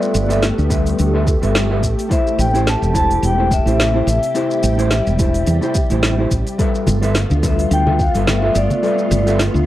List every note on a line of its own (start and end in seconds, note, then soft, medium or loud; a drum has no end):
0.00 0.26 G3 loud
0.00 4.03 A3 medium
0.00 1.78 B3 medium
0.00 0.26 F4 medium
0.00 6.55 G4 medium
0.00 0.27 A4 medium
0.00 0.27 B4 medium
0.00 0.40 D5 medium
0.00 0.27 E5 loud
0.00 shaker soft
0.15 0.51 G1 loud
0.15 open hi-hat soft
0.15 shaker medium
0.29 0.42 G3 medium
0.29 0.42 F4 medium
0.29 0.43 A4 medium
0.29 0.43 B4 medium
0.29 0.43 E5 loud
0.29 open hi-hat soft
0.29 shaker soft
0.43 snare loud
0.43 open hi-hat medium
0.43 shaker soft
0.58 0.93 D2 medium
0.58 shaker soft
0.69 1.10 G3 medium
0.69 1.10 F4 medium
0.69 1.10 A4 medium
0.69 1.11 B4 medium
0.69 1.11 E5 medium
0.69 kick loud
0.69 open hi-hat soft
0.69 shaker medium
0.86 open hi-hat soft
0.86 shaker soft
0.99 1.35 D2 medium
0.99 open hi-hat medium
0.99 shaker soft
1.13 1.26 G3 medium
1.13 1.27 F4 medium
1.13 1.27 A4 medium
1.13 1.27 B4 medium
1.13 1.28 E5 medium
1.27 kick loud
1.27 shaker medium
1.41 1.83 G1 medium
1.41 1.66 G3 medium
1.41 1.66 F4 medium
1.41 1.67 A4 medium
1.41 1.67 B4 medium
1.41 1.67 E5 loud
1.41 open hi-hat soft
1.41 shaker soft
1.55 snare loud
1.55 open hi-hat medium
1.55 shaker soft
1.69 1.81 G3 medium
1.69 1.81 F4 medium
1.69 1.81 A4 medium
1.69 1.81 B4 medium
1.69 1.82 E5 medium
1.83 1.94 A1 medium
1.83 6.56 C3 medium
1.83 kick medium
1.83 open hi-hat soft
1.83 shaker medium
1.99 open hi-hat soft
1.99 shaker soft
2.09 2.50 A3 loud
2.09 2.50 E4 medium
2.09 2.50 G4 medium
2.09 2.51 C5 loud
2.09 2.38 E5 medium
2.09 kick loud
2.09 open hi-hat medium
2.09 shaker soft
2.27 shaker soft
2.39 2.75 A1 loud
2.39 2.53 G5 loud
2.39 open hi-hat soft
2.39 shaker medium
2.53 2.67 A3 medium
2.53 2.67 E4 medium
2.53 2.67 G4 medium
2.53 2.68 C5 loud
2.53 open hi-hat soft
2.53 shaker soft
2.67 2.96 A5 loud
2.67 snare loud
2.67 open hi-hat medium
2.67 shaker soft
2.82 3.17 E1 medium
2.82 shaker soft
2.94 3.34 A3 medium
2.94 3.34 E4 medium
2.94 3.35 G4 medium
2.94 3.35 C5 medium
2.94 3.22 A5 loud
2.94 kick loud
2.94 open hi-hat soft
2.94 shaker medium
3.11 open hi-hat soft
3.11 shaker soft
3.23 3.59 E1 loud
3.23 3.53 G5 loud
3.23 open hi-hat medium
3.23 shaker soft
3.38 3.51 A3 medium
3.38 3.51 E4 medium
3.38 3.52 G4 medium
3.38 3.52 C5 medium
3.51 4.08 E5 loud
3.51 kick loud
3.51 shaker medium
3.65 4.01 A1 medium
3.65 3.90 A3 medium
3.65 3.91 E4 medium
3.65 3.91 G4 medium
3.65 3.91 C5 medium
3.65 open hi-hat soft
3.65 shaker soft
3.80 snare loud
3.80 open hi-hat medium
3.80 shaker soft
3.94 4.07 A3 medium
3.94 4.07 E4 medium
3.94 4.08 G4 medium
3.94 4.08 C5 medium
4.06 4.18 A1 medium
4.06 6.56 G3 medium
4.06 6.28 E5 medium
4.06 open hi-hat soft
4.06 shaker medium
4.23 open hi-hat soft
4.23 shaker soft
4.35 4.75 A3 loud
4.35 4.75 E4 medium
4.35 4.75 G4 medium
4.35 4.76 C5 loud
4.35 open hi-hat medium
4.35 shaker soft
4.51 shaker soft
4.63 5.00 A1 loud
4.63 open hi-hat soft
4.63 shaker medium
4.78 4.91 A3 loud
4.78 4.91 E4 medium
4.78 4.91 G4 medium
4.78 4.92 C5 loud
4.78 open hi-hat soft
4.78 shaker soft
4.91 snare medium
4.91 open hi-hat soft
4.91 shaker soft
5.07 5.41 E1 medium
5.07 shaker soft
5.18 5.59 A3 medium
5.18 5.59 E4 medium
5.18 5.59 G4 medium
5.18 5.60 C5 medium
5.18 kick loud
5.18 open hi-hat soft
5.18 shaker medium
5.34 open hi-hat soft
5.34 shaker soft
5.47 5.58 E2 medium
5.47 open hi-hat medium
5.47 shaker soft
5.61 5.75 A3 medium
5.61 5.75 E4 medium
5.61 5.76 G4 medium
5.61 5.76 C5 medium
5.61 shaker soft
5.75 kick loud
5.75 shaker medium
5.90 6.26 A1 medium
5.90 6.15 A3 medium
5.90 6.15 E4 medium
5.90 6.15 G4 medium
5.90 6.16 C5 medium
5.90 open hi-hat soft
5.90 shaker soft
6.03 snare loud
6.03 open hi-hat medium
6.03 shaker soft
6.18 6.31 A3 medium
6.18 6.31 E4 medium
6.18 6.32 G4 medium
6.18 6.32 C5 medium
6.31 6.42 A1 medium
6.31 kick medium
6.31 open hi-hat soft
6.31 shaker medium
6.47 open hi-hat soft
6.47 shaker soft
6.58 6.99 G3 loud
6.58 9.66 A3 medium
6.58 9.66 B3 medium
6.58 6.99 F4 medium
6.58 9.66 F4 loud
6.58 6.99 A4 medium
6.58 6.99 B4 medium
6.58 7.00 E5 loud
6.58 kick loud
6.58 open hi-hat medium
6.58 shaker soft
6.75 shaker soft
6.87 7.24 G1 loud
6.87 open hi-hat soft
6.87 high bongo soft
6.87 high conga medium
6.87 shaker medium
7.01 7.15 G3 medium
7.01 7.15 F4 medium
7.01 7.16 A4 medium
7.01 7.16 B4 medium
7.01 7.16 E5 loud
7.01 open hi-hat soft
7.01 shaker soft
7.15 snare medium
7.15 open hi-hat medium
7.15 shaker soft
7.30 7.66 D2 medium
7.30 high conga medium
7.30 shaker soft
7.42 7.83 G3 medium
7.42 7.83 F4 medium
7.42 7.83 A4 medium
7.42 7.84 B4 medium
7.42 7.84 E5 medium
7.42 7.58 E5 medium
7.42 kick loud
7.42 open hi-hat soft
7.42 low conga medium
7.42 shaker medium
7.59 open hi-hat soft
7.59 shaker soft
7.71 8.07 D2 medium
7.71 8.01 G5 loud
7.71 open hi-hat medium
7.71 shaker soft
7.86 7.99 G3 medium
7.86 7.99 F4 medium
7.86 8.00 A4 medium
7.86 8.00 B4 medium
7.86 8.00 E5 medium
7.86 high conga medium
7.99 8.27 F5 loud
7.99 kick loud
7.99 shaker medium
8.14 8.50 G1 medium
8.14 8.39 G3 medium
8.14 8.39 F4 medium
8.14 8.40 A4 medium
8.14 8.40 B4 medium
8.14 8.40 E5 medium
8.14 open hi-hat soft
8.14 shaker soft
8.27 8.57 E5 loud
8.27 snare medium
8.27 open hi-hat soft
8.27 high conga medium
8.27 shaker soft
8.42 8.55 G3 medium
8.42 8.56 F4 medium
8.42 8.56 A4 medium
8.42 8.56 B4 medium
8.42 8.57 E5 loud
8.42 high bongo medium
8.55 8.66 G1 loud
8.55 9.36 D5 medium
8.55 open hi-hat soft
8.55 shaker medium
8.70 open hi-hat soft
8.70 high conga medium
8.70 shaker soft
8.82 9.23 G3 loud
8.82 9.23 F4 medium
8.82 9.23 A4 loud
8.82 9.24 B4 medium
8.82 9.24 E5 loud
8.82 open hi-hat medium
8.82 shaker soft
8.99 shaker soft
9.11 9.48 G1 loud
9.11 open hi-hat soft
9.11 high bongo soft
9.11 high conga medium
9.11 shaker medium
9.26 9.39 G3 loud
9.26 9.40 F4 medium
9.26 9.40 A4 medium
9.26 9.40 B4 medium
9.26 9.40 E5 loud
9.26 open hi-hat soft
9.26 shaker soft
9.39 snare medium
9.39 open hi-hat medium
9.39 shaker soft
9.54 9.66 D2 medium
9.54 high conga medium
9.54 shaker soft